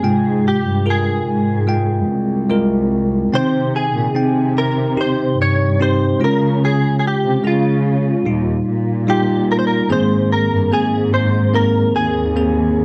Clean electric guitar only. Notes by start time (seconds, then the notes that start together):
Already playing: G#4
0.48 G4
0.90 G#4
3.35 C5
3.76 G#4
4.58 A#4
5.01 C5
5.42 C#5
5.82 C5
6.24 A#4
6.65 G#4
6.99 G#4
7.07 G4
7.47 F4
9.10 G4
9.52 A#4
9.59 C5
9.67 A#4
9.92 C5
10.32 A#4
10.73 G#4
11.14 C5
11.55 A#4
11.96 G#4